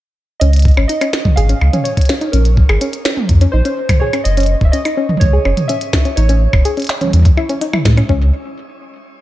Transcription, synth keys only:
0.40 0.87 D#5 medium
0.88 1.38 D#5 loud
1.36 1.86 F5 loud
1.84 2.34 C#5 medium
2.32 3.01 A#4 medium
3.52 4.02 C5 medium
4.00 4.25 C#5 medium
4.24 4.63 D#5 loud
4.65 4.73 E5 medium
4.72 5.22 D#5 loud
5.20 5.70 C#5 loud
5.68 6.18 E5 loud
6.16 6.85 C#5 medium

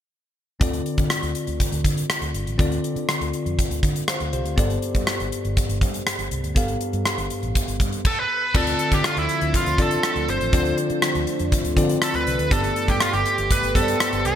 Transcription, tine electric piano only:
0.60 1.31 D3 medium
0.60 2.55 C4 medium
0.60 2.55 F4 medium
0.60 2.56 A4 medium
0.60 2.56 D5 medium
2.58 3.30 D3 medium
2.58 4.53 C4 medium
2.58 4.53 F4 medium
2.58 4.05 A4 medium
2.58 4.06 D5 medium
4.08 4.32 C5 medium
4.08 4.32 F5 medium
4.33 4.56 G4 medium
4.33 4.80 C5 medium
4.56 5.28 G2 medium
4.56 6.51 B3 medium
4.56 6.52 G4 medium
4.56 6.52 A4 medium
4.56 6.53 D5 medium
6.55 7.26 G2 medium
6.55 8.01 B3 medium
6.55 8.02 G4 medium
6.55 8.02 A4 medium
6.55 8.02 F5 medium
8.54 9.25 D3 medium
8.54 9.25 C4 medium
8.54 9.26 F4 medium
8.54 9.26 A4 medium
8.54 9.26 D5 medium
9.78 10.32 C4 medium
9.78 10.32 F4 medium
9.78 10.32 A4 medium
9.78 10.32 D5 medium
10.52 11.23 D3 medium
10.52 11.24 C4 medium
10.52 11.24 F4 medium
10.52 11.24 A4 medium
10.52 11.24 D5 medium
11.76 12.30 C4 medium
11.76 12.30 F4 medium
11.76 12.30 A4 medium
11.76 12.31 D5 medium
12.51 13.22 G2 medium
12.51 13.22 B3 medium
12.51 13.22 G4 medium
12.51 13.23 A4 medium
12.51 13.23 D5 medium
13.75 14.28 B3 medium
13.75 14.29 G4 medium
13.75 14.29 A4 medium
13.75 13.82 C5 medium
13.82 14.32 D5 medium

